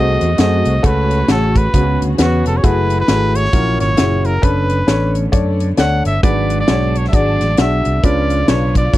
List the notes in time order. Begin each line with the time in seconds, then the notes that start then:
Already playing: C2 A3 C4 F#4 G#4 C5 D#5
0.21 E2, closed hi-hat
0.38 F#2 A3 C4 F#4 G#4 D#5, snare, closed hi-hat
0.66 C2, closed hi-hat
0.83 C#2 C#3 A3 C#4 F#4 A4 B4 C#5, kick, closed hi-hat
1.11 closed hi-hat
1.28 A1 A3 C#4 F#4 G#4 A4, snare, closed hi-hat
1.56 B4, kick, closed hi-hat
1.74 C#2 C#3 B3 C#4 F#4 G#4, kick, closed hi-hat
2.01 D2, closed hi-hat
2.18 E2 B3 C#4 F#4 B4, snare, closed hi-hat
2.46 F1 A4, closed hi-hat
2.57 C#5
2.63 F#1 A3 E4 F#4 G#4 B4, kick, closed hi-hat
2.90 closed hi-hat
3.00 B4
3.08 G#1 A3 E4 F#4 G#4, snare, closed hi-hat
3.35 C#5, closed hi-hat
3.45 snare
3.53 A#1 A#2 F#3 A#3 C#4 E4 F#4 A#4, kick, closed hi-hat
3.80 G#1 C#5, snare, closed hi-hat
3.97 F#1 C#4 E4 F#4 G#4, snare, closed hi-hat
4.25 A#4, closed hi-hat
4.42 F#1 D3 A3 B3 C#4 D4 A4 B4, kick, closed hi-hat
4.70 closed hi-hat
4.87 A1 C#4 D4 A4 C#5, snare, closed hi-hat
5.15 closed hi-hat
5.32 F#2 D4 A4 C#5 D5, kick, closed hi-hat
5.60 closed hi-hat
5.77 D2 D4 A4 C#5 D5 F#5, snare, closed hi-hat
6.05 G1 E5, closed hi-hat
6.23 G#1 G#2 F#3 G#3 D4 F#4 G#4 B4 D5, kick, closed hi-hat
6.50 closed hi-hat
6.61 D5
6.67 B1 D4 F#4 G#4 C#5, snare, closed hi-hat
6.95 C#5, closed hi-hat
7.05 E5, snare
7.12 G#1 D4 F#4 G#4 D5, kick, closed hi-hat
7.41 A1, snare, closed hi-hat
7.57 B1 D4 F#4 G#4 D5 E5, snare, closed hi-hat
7.85 C2, closed hi-hat
8.03 C#2 C#3 F3 C#4 D4 F4 B4 D5, kick, closed hi-hat
8.30 closed hi-hat
8.48 B1 D4 F4 B4 C#5 D5, snare, closed hi-hat
8.75 D5, kick, closed hi-hat
8.93 D2 D4 F4 B4 C#5, kick, closed hi-hat